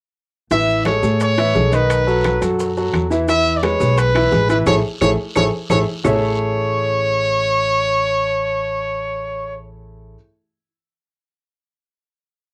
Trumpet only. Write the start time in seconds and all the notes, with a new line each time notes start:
0.52 E5
0.86 C#5
1.22 C#5
1.75 B4
3.29 E5
3.56 D5
3.64 C#5
3.98 B4
4.51 B4
4.67 C#5
5.02 C#5
5.37 C#5
5.71 C#5
6.06 C#5